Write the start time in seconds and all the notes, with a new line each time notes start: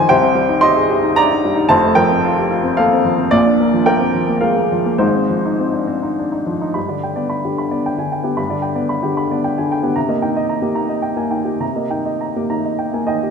Already playing: G#1 G#2 D#3 F3 G3 C4 D#4 F4 C5 D5 G#5
0.09 C2 C3 C5 G5
0.23 C4
0.35 G3
0.49 D#4
0.61 G4 D#5 C6
0.76 G#4
0.90 G4
1.03 D#4
1.16 D4 D5 A#5
1.31 D#4
1.45 G3
1.56 D#4
1.69 F1 F2 C5 A5
1.85 A3
1.95 F3 A#4 G5
2.10 C4
2.24 F4
2.38 G4
2.51 F4
2.64 C4
2.77 A#3 A4 F5
2.93 C4
3.05 F3
3.18 C4
3.31 A#1 A#2 F4 D5
3.47 D4
3.60 A#3
3.73 F3
3.86 A#3 A#4 G5
4.00 C4
4.15 F3
4.29 A#3
4.41 G#3 A#4 F5
4.57 A#3
4.72 F3
4.86 A#3
4.98 G#1 G#2 D#4 C5
5.15 C4
5.29 F3
5.45 D#4
5.60 C4
5.73 D4
5.87 C4
6.03 D#4
6.19 D4
6.32 D#4
6.46 F3
6.61 D#4
6.74 G2 B5
6.88 D3 D5
7.03 G5
7.16 B3 D5
7.29 B5
7.45 D3 G4
7.58 B5
7.71 B3 D5
7.86 G5
7.98 D3 G#5
8.12 G5
8.23 B3 G4
8.37 G2 B5
8.50 D3 D5
8.62 G5
8.75 B3 D5
8.89 B5
9.03 D3 G4
9.17 B5
9.31 B3 D5
9.44 G5
9.58 D3 G#5
9.72 G5
9.83 B3 G4
9.96 C3 A#5
10.09 A#3 D#5
10.22 D#4 G5
10.36 D#5
10.49 A#5
10.62 A#3 G4
10.75 D#4 A#5
10.89 D#5
11.02 G5
11.17 A#3 G#5
11.30 D#4 G5
11.45 G4
11.60 C3 A#5
11.76 A#3 D#5
11.90 D#4 G5
12.06 D#5
12.21 A#5
12.36 A#3 G4
12.50 D#4 A#5
12.65 D#5
12.79 G5
12.94 A#3 G#5
13.07 D#4 D#5 G5
13.23 G4